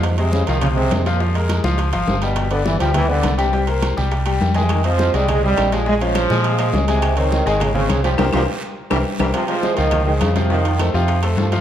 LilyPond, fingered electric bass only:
\new Staff \with { instrumentName = "Fingered electric bass" } { \clef bass \time 4/4 \key f \minor \tempo 4 = 206 f,4. c,4. f,4~ | f,4. des,4 aes,,8 g,,4~ | g,,4. d,4. c,4~ | c,4. c,4. f,4~ |
f,4. c,4. bes,,4~ | bes,,4. bes,4. des,4~ | des,4. aes,,4. c,4 | c,8 c,8 r4. c,8 r8 c,8 |
r4. des,4. f,4~ | f,4. f,4. g,4 | }